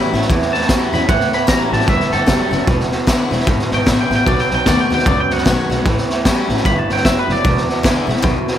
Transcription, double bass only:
0.14 A1
0.29 E2
0.93 E2
1.09 A1
1.73 A1
1.88 G1
2.13 G1
2.27 F#1
2.52 F#1
2.67 E1
3.32 E1
3.47 G#1
3.72 G#1
3.86 A1
4.11 A1
4.26 B1
4.51 B1
4.66 D#2
4.91 D#2
5.06 C#2
5.30 C#2
5.46 B1
5.70 B1
5.85 A1
6.50 A1
6.65 G1
6.90 G1
7.05 F#1
7.29 F#1
7.45 E1
8.08 E1
8.24 B1

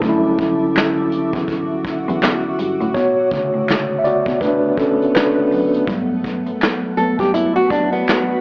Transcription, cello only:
0.02 D2
1.34 E2
2.08 E2
2.22 E2
2.59 G2
2.81 A2
2.95 B2
3.54 A2
4.27 B2
4.42 A2
5.51 F#2
5.88 G2
6.47 F#2
7.20 G2
7.35 F#2

